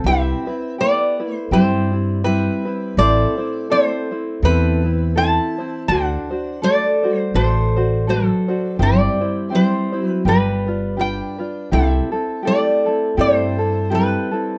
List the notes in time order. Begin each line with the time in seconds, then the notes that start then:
0.04 C2 C4 E4 G4 B4 E5
0.47 C4 E4 B4
0.78 B3 E4 G4 B4 D5
1.20 E4 B4
1.30 A3
1.36 C5
1.51 G2 G3 C4 E4 G4 C5
1.93 C4 E4
2.24 G3 C4 E4 G4 B4
2.65 C4 E4 B4
2.97 A1 A3 C4 E4 A4 C5 D5
3.37 C4 E4 C5
3.70 A3 C4 E4 A4 C5
4.11 C4 E4 C5
4.43 E2 E3 C4 E4 A4 B4
4.84 C4 E4
5.16 C4 E4 A4 C5 A5
5.58 C4 E4 C5
5.88 D2 D4 F#4 A4 C5 F#5
6.31 D4 F#4 C5
6.62 A3 D4 F#4 A4 C5 D5
7.03 D4 F#4 C5
7.13 G3
7.18 C5
7.34 A1 A3 D4 F#4 A4 C5
7.76 D4 F#4 C5
8.07 F#3 D4 F#4 A4 C5
8.48 D4 F#4 C5
8.79 G1 G3 C4 E4 G4 C5 D5
9.20 C4 E4 C5
9.50 C4 E4 G4 C5
9.55 G3 C5
9.92 C4 E4 C5
10.02 F#3
10.06 B4
10.25 G1 G3 D4 F4 G4 B4
10.66 D4 F4 B4
10.97 D4 F4 G4 B4 G5
11.38 D4 F4 B4
11.71 C2 C4 E4 G4 A4 E5
12.12 C4 E4 A4
12.43 C4 E4 G4 A4
12.47 A3 D5
12.86 C4 E4 A4
13.17 G2 A3 C4 E4 G4 A4 C5
13.59 C4 E4 A4
13.90 G3 C4 E4 G4 A4
13.95 B4
14.31 C4 E4 A4